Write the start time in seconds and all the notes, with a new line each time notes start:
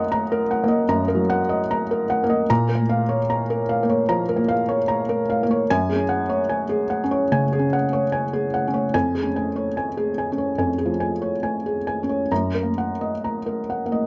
Already playing: F#2 A#3 A#4 D#5 F#5 A#5
0.12 A#5
0.32 A#4
0.51 F#5
0.64 A#3
0.68 D#5
0.89 F#2 A#5
1.08 A#4
1.15 F#3
1.30 F#5
1.49 D#5
1.71 A#5
1.91 A#4
2.10 F#5
2.24 A#3
2.30 D#5
2.50 A#2 A#5
2.69 A#4
2.75 A#3
2.89 F5
3.09 C#5
3.30 A#5
3.50 A#4
3.69 F5
3.83 A#3
3.89 C#5
4.09 F3 A#5
4.29 A#4
4.36 A#3
4.48 F5
4.69 C#5
4.88 A#5
5.09 A#4
5.30 F5
5.43 A#3
5.51 C#5
5.70 F#2 G#5
5.90 G#4
5.95 C#4
6.09 F#5
6.29 C#5
6.49 G#5
6.69 G#4
6.90 F#5
7.04 C#4
7.11 C#5
7.32 C#3 G#5
7.53 G#4
7.59 C#4
7.73 F#5
7.93 C#5
8.12 G#5
8.33 G#4
8.54 F#5
8.68 C#4
8.74 C#5
8.94 F2 G#5
9.15 G#4
9.22 C#4
9.36 G#5
9.56 C#5
9.77 G#5
9.97 G#4
10.18 G#5
10.32 C#4
10.38 C#5
10.58 F2 G#5
10.78 G#4
10.86 F3
11.00 G#5
11.22 C#5
11.43 G#5
11.66 G#4
11.87 G#5
12.03 C#4
12.09 C#5
12.32 F#2 A#5
12.55 A#4
12.63 A#3
12.78 F#5
13.01 D#5
13.24 A#5
13.46 A#4
13.70 F#5
13.86 A#3
13.92 D#5